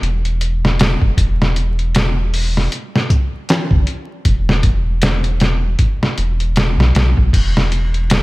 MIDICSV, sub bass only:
0, 0, Header, 1, 2, 480
1, 0, Start_track
1, 0, Key_signature, 1, "minor"
1, 0, Tempo, 769231
1, 731, Time_signature, 4, 2, 24, 8
1, 5133, End_track
2, 0, Start_track
2, 0, Title_t, "Sub bass"
2, 0, Program_c, 0, 38
2, 13, Note_on_c, 0, 28, 87
2, 605, Note_off_c, 0, 28, 0
2, 634, Note_on_c, 0, 28, 75
2, 720, Note_off_c, 0, 28, 0
2, 736, Note_on_c, 0, 28, 93
2, 1674, Note_off_c, 0, 28, 0
2, 2317, Note_on_c, 0, 31, 78
2, 2402, Note_off_c, 0, 31, 0
2, 2655, Note_on_c, 0, 28, 92
2, 3594, Note_off_c, 0, 28, 0
2, 3857, Note_on_c, 0, 28, 86
2, 4228, Note_off_c, 0, 28, 0
2, 4232, Note_on_c, 0, 35, 92
2, 4319, Note_off_c, 0, 35, 0
2, 4337, Note_on_c, 0, 35, 90
2, 4457, Note_off_c, 0, 35, 0
2, 4476, Note_on_c, 0, 35, 101
2, 4561, Note_off_c, 0, 35, 0
2, 4579, Note_on_c, 0, 28, 95
2, 5133, Note_off_c, 0, 28, 0
2, 5133, End_track
0, 0, End_of_file